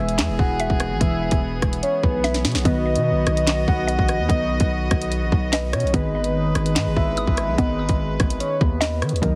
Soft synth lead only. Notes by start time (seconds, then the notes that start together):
Already playing: E5
0.39 F#5
1.01 E5
1.83 C#5
2.03 B4
2.65 D#5
3.68 F#5
4.30 D#5
5.52 B4
5.73 C#5
5.94 D#5
6.96 E5
7.58 D#5
8.40 C#5
8.61 B4
9.23 D#5